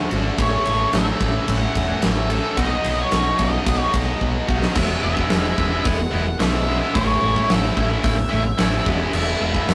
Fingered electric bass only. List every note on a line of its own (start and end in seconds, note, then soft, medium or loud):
0.12 0.29 G#1 medium
0.38 0.55 A1 medium
0.67 0.84 A1 medium
0.93 1.10 A1 loud
1.20 1.37 A1 medium
1.48 1.65 A1 medium
1.75 1.92 E1 medium
2.04 2.38 A1 medium
2.57 2.74 B1 medium
2.85 3.02 B1 medium
3.13 3.29 B1 loud
3.39 3.56 B1 medium
3.66 3.83 B1 medium
3.94 4.11 B1 medium
4.21 4.38 B1 medium
4.48 4.66 B1 medium
4.76 4.95 E1 loud
5.03 5.23 E1 medium
5.32 5.51 E1 medium
5.58 5.77 E1 medium
5.85 6.05 E1 medium
6.13 6.33 E1 medium
6.40 6.79 B1 medium
6.95 7.15 A1 loud
7.22 7.42 A1 medium
7.50 7.70 A1 loud
7.77 7.96 A1 medium
8.04 8.23 A1 medium
8.32 8.52 A1 medium
8.59 8.78 A1 medium
8.86 9.06 E1 medium
9.13 9.33 E1 medium
9.41 9.61 E1 medium
9.68 9.74 E1 loud